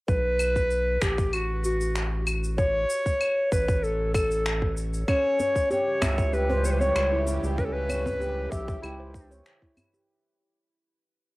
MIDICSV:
0, 0, Header, 1, 7, 480
1, 0, Start_track
1, 0, Tempo, 625000
1, 64, Time_signature, 4, 2, 24, 8
1, 8731, End_track
2, 0, Start_track
2, 0, Title_t, "Clarinet"
2, 0, Program_c, 0, 71
2, 66, Note_on_c, 0, 71, 106
2, 787, Note_on_c, 0, 67, 85
2, 799, Note_off_c, 0, 71, 0
2, 1028, Note_on_c, 0, 66, 87
2, 1039, Note_off_c, 0, 67, 0
2, 1264, Note_off_c, 0, 66, 0
2, 1269, Note_on_c, 0, 66, 81
2, 1716, Note_off_c, 0, 66, 0
2, 1983, Note_on_c, 0, 73, 113
2, 2673, Note_off_c, 0, 73, 0
2, 2703, Note_on_c, 0, 71, 83
2, 2945, Note_on_c, 0, 69, 89
2, 2956, Note_off_c, 0, 71, 0
2, 3179, Note_off_c, 0, 69, 0
2, 3184, Note_on_c, 0, 69, 88
2, 3633, Note_off_c, 0, 69, 0
2, 3903, Note_on_c, 0, 73, 115
2, 4353, Note_off_c, 0, 73, 0
2, 4387, Note_on_c, 0, 73, 100
2, 4867, Note_on_c, 0, 71, 98
2, 4879, Note_off_c, 0, 73, 0
2, 5111, Note_on_c, 0, 73, 93
2, 5122, Note_off_c, 0, 71, 0
2, 5157, Note_on_c, 0, 71, 85
2, 5168, Note_off_c, 0, 73, 0
2, 5222, Note_on_c, 0, 73, 97
2, 5233, Note_off_c, 0, 71, 0
2, 5586, Note_off_c, 0, 73, 0
2, 5821, Note_on_c, 0, 71, 108
2, 5875, Note_on_c, 0, 69, 92
2, 5887, Note_off_c, 0, 71, 0
2, 5935, Note_on_c, 0, 71, 114
2, 5946, Note_off_c, 0, 69, 0
2, 6534, Note_on_c, 0, 67, 92
2, 6546, Note_off_c, 0, 71, 0
2, 6772, Note_off_c, 0, 67, 0
2, 6777, Note_on_c, 0, 64, 81
2, 7230, Note_off_c, 0, 64, 0
2, 8731, End_track
3, 0, Start_track
3, 0, Title_t, "Handpan"
3, 0, Program_c, 1, 114
3, 3904, Note_on_c, 1, 61, 91
3, 4133, Note_off_c, 1, 61, 0
3, 4145, Note_on_c, 1, 73, 69
3, 4373, Note_off_c, 1, 73, 0
3, 4382, Note_on_c, 1, 67, 96
3, 4503, Note_off_c, 1, 67, 0
3, 4625, Note_on_c, 1, 76, 69
3, 4853, Note_off_c, 1, 76, 0
3, 4863, Note_on_c, 1, 67, 89
3, 4977, Note_off_c, 1, 67, 0
3, 4990, Note_on_c, 1, 72, 75
3, 5098, Note_off_c, 1, 72, 0
3, 5229, Note_on_c, 1, 73, 75
3, 5457, Note_off_c, 1, 73, 0
3, 5470, Note_on_c, 1, 64, 73
3, 5578, Note_off_c, 1, 64, 0
3, 5708, Note_on_c, 1, 67, 75
3, 5817, Note_off_c, 1, 67, 0
3, 5823, Note_on_c, 1, 61, 98
3, 6052, Note_off_c, 1, 61, 0
3, 6062, Note_on_c, 1, 73, 74
3, 6291, Note_off_c, 1, 73, 0
3, 6300, Note_on_c, 1, 67, 102
3, 6422, Note_off_c, 1, 67, 0
3, 6542, Note_on_c, 1, 76, 74
3, 6771, Note_off_c, 1, 76, 0
3, 6784, Note_on_c, 1, 67, 97
3, 6898, Note_off_c, 1, 67, 0
3, 6909, Note_on_c, 1, 72, 78
3, 7018, Note_off_c, 1, 72, 0
3, 7149, Note_on_c, 1, 73, 74
3, 7377, Note_off_c, 1, 73, 0
3, 7390, Note_on_c, 1, 64, 81
3, 7498, Note_off_c, 1, 64, 0
3, 7631, Note_on_c, 1, 67, 77
3, 7739, Note_off_c, 1, 67, 0
3, 8731, End_track
4, 0, Start_track
4, 0, Title_t, "Synth drone"
4, 0, Program_c, 2, 95
4, 3898, Note_on_c, 2, 55, 70
4, 3899, Note_on_c, 2, 49, 79
4, 3900, Note_on_c, 2, 52, 73
4, 3900, Note_on_c, 2, 64, 74
4, 3901, Note_on_c, 2, 67, 88
4, 7710, Note_off_c, 2, 55, 0
4, 7711, Note_off_c, 2, 49, 0
4, 7711, Note_off_c, 2, 52, 0
4, 7711, Note_off_c, 2, 64, 0
4, 7712, Note_off_c, 2, 67, 0
4, 8731, End_track
5, 0, Start_track
5, 0, Title_t, "Analog synth bass"
5, 0, Program_c, 3, 38
5, 64, Note_on_c, 3, 35, 103
5, 751, Note_off_c, 3, 35, 0
5, 783, Note_on_c, 3, 33, 95
5, 2190, Note_off_c, 3, 33, 0
5, 2703, Note_on_c, 3, 33, 96
5, 3870, Note_off_c, 3, 33, 0
5, 4622, Note_on_c, 3, 37, 101
5, 5310, Note_off_c, 3, 37, 0
5, 5343, Note_on_c, 3, 37, 89
5, 5673, Note_off_c, 3, 37, 0
5, 5707, Note_on_c, 3, 37, 94
5, 6509, Note_off_c, 3, 37, 0
5, 6543, Note_on_c, 3, 35, 99
5, 6742, Note_off_c, 3, 35, 0
5, 6783, Note_on_c, 3, 37, 105
5, 7230, Note_off_c, 3, 37, 0
5, 8731, End_track
6, 0, Start_track
6, 0, Title_t, "Djembe"
6, 4147, Note_on_c, 9, 62, 35
6, 4147, Note_on_c, 9, 63, 54
6, 4223, Note_off_c, 9, 63, 0
6, 4224, Note_off_c, 9, 62, 0
6, 4391, Note_on_c, 9, 63, 54
6, 4468, Note_off_c, 9, 63, 0
6, 4621, Note_on_c, 9, 62, 31
6, 4624, Note_on_c, 9, 64, 79
6, 4629, Note_on_c, 9, 63, 36
6, 4697, Note_off_c, 9, 62, 0
6, 4701, Note_off_c, 9, 64, 0
6, 4706, Note_off_c, 9, 63, 0
6, 4987, Note_on_c, 9, 63, 69
6, 5064, Note_off_c, 9, 63, 0
6, 5103, Note_on_c, 9, 62, 37
6, 5179, Note_off_c, 9, 62, 0
6, 5225, Note_on_c, 9, 63, 64
6, 5302, Note_off_c, 9, 63, 0
6, 5584, Note_on_c, 9, 62, 53
6, 5661, Note_off_c, 9, 62, 0
6, 6060, Note_on_c, 9, 62, 35
6, 6063, Note_on_c, 9, 63, 61
6, 6137, Note_off_c, 9, 62, 0
6, 6139, Note_off_c, 9, 63, 0
6, 6193, Note_on_c, 9, 64, 89
6, 6270, Note_off_c, 9, 64, 0
6, 6308, Note_on_c, 9, 63, 61
6, 6385, Note_off_c, 9, 63, 0
6, 6546, Note_on_c, 9, 62, 30
6, 6622, Note_off_c, 9, 62, 0
6, 7390, Note_on_c, 9, 62, 49
6, 7467, Note_off_c, 9, 62, 0
6, 7504, Note_on_c, 9, 64, 79
6, 7581, Note_off_c, 9, 64, 0
6, 8731, End_track
7, 0, Start_track
7, 0, Title_t, "Drums"
7, 63, Note_on_c, 9, 36, 107
7, 65, Note_on_c, 9, 82, 31
7, 140, Note_off_c, 9, 36, 0
7, 142, Note_off_c, 9, 82, 0
7, 302, Note_on_c, 9, 75, 69
7, 304, Note_on_c, 9, 82, 68
7, 378, Note_off_c, 9, 75, 0
7, 380, Note_off_c, 9, 82, 0
7, 429, Note_on_c, 9, 36, 55
7, 430, Note_on_c, 9, 82, 41
7, 506, Note_off_c, 9, 36, 0
7, 507, Note_off_c, 9, 82, 0
7, 543, Note_on_c, 9, 82, 32
7, 619, Note_off_c, 9, 82, 0
7, 781, Note_on_c, 9, 26, 77
7, 783, Note_on_c, 9, 36, 93
7, 783, Note_on_c, 9, 82, 69
7, 857, Note_off_c, 9, 26, 0
7, 859, Note_off_c, 9, 36, 0
7, 859, Note_off_c, 9, 82, 0
7, 908, Note_on_c, 9, 36, 89
7, 909, Note_on_c, 9, 82, 42
7, 985, Note_off_c, 9, 36, 0
7, 986, Note_off_c, 9, 82, 0
7, 1022, Note_on_c, 9, 75, 72
7, 1024, Note_on_c, 9, 82, 29
7, 1099, Note_off_c, 9, 75, 0
7, 1101, Note_off_c, 9, 82, 0
7, 1262, Note_on_c, 9, 82, 70
7, 1339, Note_off_c, 9, 82, 0
7, 1389, Note_on_c, 9, 82, 43
7, 1466, Note_off_c, 9, 82, 0
7, 1502, Note_on_c, 9, 26, 78
7, 1504, Note_on_c, 9, 82, 32
7, 1579, Note_off_c, 9, 26, 0
7, 1581, Note_off_c, 9, 82, 0
7, 1742, Note_on_c, 9, 75, 74
7, 1744, Note_on_c, 9, 82, 76
7, 1819, Note_off_c, 9, 75, 0
7, 1821, Note_off_c, 9, 82, 0
7, 1872, Note_on_c, 9, 82, 44
7, 1949, Note_off_c, 9, 82, 0
7, 1983, Note_on_c, 9, 36, 108
7, 1985, Note_on_c, 9, 82, 32
7, 2060, Note_off_c, 9, 36, 0
7, 2062, Note_off_c, 9, 82, 0
7, 2226, Note_on_c, 9, 82, 78
7, 2303, Note_off_c, 9, 82, 0
7, 2350, Note_on_c, 9, 36, 62
7, 2351, Note_on_c, 9, 82, 41
7, 2426, Note_off_c, 9, 36, 0
7, 2427, Note_off_c, 9, 82, 0
7, 2463, Note_on_c, 9, 75, 72
7, 2465, Note_on_c, 9, 82, 33
7, 2539, Note_off_c, 9, 75, 0
7, 2542, Note_off_c, 9, 82, 0
7, 2703, Note_on_c, 9, 36, 100
7, 2706, Note_on_c, 9, 82, 74
7, 2780, Note_off_c, 9, 36, 0
7, 2783, Note_off_c, 9, 82, 0
7, 2829, Note_on_c, 9, 36, 104
7, 2833, Note_on_c, 9, 82, 42
7, 2906, Note_off_c, 9, 36, 0
7, 2910, Note_off_c, 9, 82, 0
7, 2948, Note_on_c, 9, 82, 31
7, 3025, Note_off_c, 9, 82, 0
7, 3183, Note_on_c, 9, 36, 110
7, 3185, Note_on_c, 9, 75, 71
7, 3187, Note_on_c, 9, 82, 75
7, 3260, Note_off_c, 9, 36, 0
7, 3261, Note_off_c, 9, 75, 0
7, 3263, Note_off_c, 9, 82, 0
7, 3311, Note_on_c, 9, 82, 43
7, 3388, Note_off_c, 9, 82, 0
7, 3424, Note_on_c, 9, 26, 78
7, 3426, Note_on_c, 9, 82, 33
7, 3501, Note_off_c, 9, 26, 0
7, 3503, Note_off_c, 9, 82, 0
7, 3549, Note_on_c, 9, 36, 60
7, 3626, Note_off_c, 9, 36, 0
7, 3665, Note_on_c, 9, 82, 81
7, 3741, Note_off_c, 9, 82, 0
7, 3792, Note_on_c, 9, 82, 43
7, 3868, Note_off_c, 9, 82, 0
7, 3902, Note_on_c, 9, 36, 119
7, 3903, Note_on_c, 9, 75, 70
7, 3905, Note_on_c, 9, 82, 33
7, 3979, Note_off_c, 9, 36, 0
7, 3980, Note_off_c, 9, 75, 0
7, 3982, Note_off_c, 9, 82, 0
7, 4143, Note_on_c, 9, 82, 72
7, 4220, Note_off_c, 9, 82, 0
7, 4268, Note_on_c, 9, 36, 60
7, 4271, Note_on_c, 9, 82, 45
7, 4345, Note_off_c, 9, 36, 0
7, 4348, Note_off_c, 9, 82, 0
7, 4384, Note_on_c, 9, 82, 33
7, 4461, Note_off_c, 9, 82, 0
7, 4621, Note_on_c, 9, 36, 94
7, 4624, Note_on_c, 9, 26, 75
7, 4624, Note_on_c, 9, 75, 69
7, 4626, Note_on_c, 9, 82, 77
7, 4698, Note_off_c, 9, 36, 0
7, 4701, Note_off_c, 9, 26, 0
7, 4701, Note_off_c, 9, 75, 0
7, 4703, Note_off_c, 9, 82, 0
7, 4747, Note_on_c, 9, 36, 107
7, 4750, Note_on_c, 9, 82, 42
7, 4824, Note_off_c, 9, 36, 0
7, 4827, Note_off_c, 9, 82, 0
7, 4865, Note_on_c, 9, 82, 31
7, 4942, Note_off_c, 9, 82, 0
7, 5104, Note_on_c, 9, 82, 80
7, 5181, Note_off_c, 9, 82, 0
7, 5233, Note_on_c, 9, 82, 44
7, 5310, Note_off_c, 9, 82, 0
7, 5344, Note_on_c, 9, 26, 84
7, 5344, Note_on_c, 9, 75, 73
7, 5346, Note_on_c, 9, 82, 36
7, 5420, Note_off_c, 9, 26, 0
7, 5420, Note_off_c, 9, 75, 0
7, 5422, Note_off_c, 9, 82, 0
7, 5584, Note_on_c, 9, 82, 80
7, 5661, Note_off_c, 9, 82, 0
7, 5712, Note_on_c, 9, 82, 47
7, 5789, Note_off_c, 9, 82, 0
7, 5822, Note_on_c, 9, 36, 113
7, 5825, Note_on_c, 9, 82, 31
7, 5899, Note_off_c, 9, 36, 0
7, 5902, Note_off_c, 9, 82, 0
7, 6064, Note_on_c, 9, 75, 68
7, 6066, Note_on_c, 9, 82, 75
7, 6140, Note_off_c, 9, 75, 0
7, 6142, Note_off_c, 9, 82, 0
7, 6189, Note_on_c, 9, 36, 62
7, 6193, Note_on_c, 9, 82, 45
7, 6265, Note_off_c, 9, 36, 0
7, 6270, Note_off_c, 9, 82, 0
7, 6307, Note_on_c, 9, 82, 33
7, 6384, Note_off_c, 9, 82, 0
7, 6542, Note_on_c, 9, 36, 101
7, 6544, Note_on_c, 9, 82, 81
7, 6619, Note_off_c, 9, 36, 0
7, 6621, Note_off_c, 9, 82, 0
7, 6668, Note_on_c, 9, 36, 110
7, 6673, Note_on_c, 9, 82, 43
7, 6744, Note_off_c, 9, 36, 0
7, 6750, Note_off_c, 9, 82, 0
7, 6785, Note_on_c, 9, 75, 69
7, 6787, Note_on_c, 9, 82, 31
7, 6862, Note_off_c, 9, 75, 0
7, 6864, Note_off_c, 9, 82, 0
7, 7022, Note_on_c, 9, 36, 109
7, 7026, Note_on_c, 9, 82, 79
7, 7098, Note_off_c, 9, 36, 0
7, 7103, Note_off_c, 9, 82, 0
7, 7154, Note_on_c, 9, 82, 44
7, 7231, Note_off_c, 9, 82, 0
7, 7265, Note_on_c, 9, 26, 78
7, 7267, Note_on_c, 9, 82, 34
7, 7342, Note_off_c, 9, 26, 0
7, 7344, Note_off_c, 9, 82, 0
7, 7388, Note_on_c, 9, 36, 62
7, 7465, Note_off_c, 9, 36, 0
7, 7504, Note_on_c, 9, 75, 70
7, 7506, Note_on_c, 9, 82, 79
7, 7581, Note_off_c, 9, 75, 0
7, 7583, Note_off_c, 9, 82, 0
7, 7633, Note_on_c, 9, 82, 46
7, 7710, Note_off_c, 9, 82, 0
7, 8731, End_track
0, 0, End_of_file